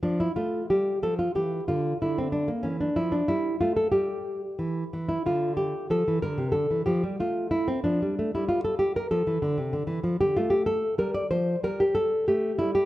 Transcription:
\new Staff \with { instrumentName = "Nylon-string guitar" } { \time 4/4 \key d \minor \tempo 4 = 93 << { d'16 e'16 f'8 g'8 a'16 f'16 g'8 f'8 e'16 c'16 d'16 bes16 | cis'16 d'16 e'16 d'16 e'8 f'16 a'16 g'4.~ g'16 e'16 | f'8 g'8 a'8 bes'8 a'8 g'8 f'8 e'16 c'16 | d'8. e'16 f'16 a'16 g'16 bes'16 a'4.~ a'16 g'16 |
\key f \major f'16 g'16 a'8 bes'16 d''16 c''8 bes'16 g'16 a'8 g'8 e'16 g'16 | } \\ { f8 a8 g8 f8 e8 d8 d4 | e8 f8 g8 a8 g4 e8 e8 | d4 f16 e16 d16 c16 d16 e16 f16 g16 a4 | f16 g16 a16 g4~ g16 f16 e16 d16 c16 d16 e16 f16 d16 |
a4 g8 f8 g4 a8 g8 | } >> }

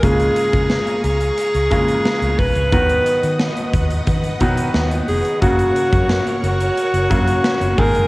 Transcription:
<<
  \new Staff \with { instrumentName = "String machine" } { \time 4/4 \key ges \major \tempo 4 = 89 <f'' aes'' bes'' des'''>1 | <ces'' ees'' ges'' ees'''>1 | <bes' des'' ges'' des'''>2.~ <bes' des'' ges'' des'''>8 <bes' ees'' aes'' ees'''>8 | }
  \new Staff \with { instrumentName = "Alto saxophone" } { \time 4/4 \key ges \major aes'4. aes'2 ces''8~ | ces''4. r2 aes'8 | ges'4. ges'2 bes'8 | }
  \new Staff \with { instrumentName = "Grand piano" } { \time 4/4 \key ges \major <des aes bes f'>2 r8 <des aes bes f'>4. | <ees ges ces' ges'>2 r8 <ees ges ces' ges'>4. | <des ges bes ges'>2 r8 <des ges bes ges'>4 <ees aes bes aes'>8 | }
  \new Staff \with { instrumentName = "Fingered electric bass" } { \clef bass \time 4/4 \key ges \major des,8 r16 des8 r16 des,8 r16 des,16 des8 r16 des,16 ces,16 des,16 | ees,8 r16 ees8 r16 ees,8 ees8 ces8 ees,8 f,,16 r16 | ges,,8 r16 ges,8 r16 ges,,8 r16 ges,,16 ges,8 r16 ges,,16 aes,,16 ges,,16 | }
  \new DrumStaff \with { instrumentName = "Drums" } \drummode { \time 4/4 <hh bd>16 hh16 hh16 <hh bd>16 sn16 hh16 hh16 hh16 hh16 hh16 <hh bd>16 hh16 sn16 hh16 <hho bd>16 hh16 | <hh bd>16 hh16 hh16 hh16 sn16 hh16 <hh bd>16 hh16 <hh bd>16 hh16 <hh bd>16 hh16 sn16 hh16 hho16 hh16 | <hh bd>16 hh16 hh16 <hh bd>16 sn16 hh16 hh16 hh16 hh16 hh16 <hh bd>16 hh16 sn16 hh16 <hho bd>16 hh16 | }
>>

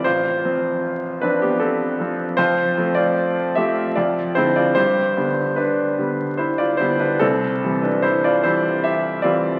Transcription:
<<
  \new Staff \with { instrumentName = "Grand piano" } { \time 3/4 \key c \major \tempo 4 = 76 <f' c''>4. <d' b'>16 <b g'>16 <c' a'>4 | <f' c''>8. <f' d''>8. <g' e''>8 <f' d''>8 <e' c''>16 <f' d''>16 | <g' c''>4 <d' b'>4 <e' c''>16 <f' d''>16 <e' c''>16 <d' b'>16 | <c' a'>8. <d' b'>16 <e' c''>16 <f' d''>16 <e' c''>8 <g' e''>8 <f' d''>8 | }
  \new Staff \with { instrumentName = "Grand piano" } { \clef bass \time 3/4 \key c \major a,,8 <f c'>4 <f c'>4 <f c'>8 | f,8 <f a c'>4 <f a c'>8 f,8 <d aes c'>8 | g,8 <d g b>4 <d g b>4 <d g b>8 | c,8 <e g c'>4 <e g c'>4 <e g c'>8 | }
>>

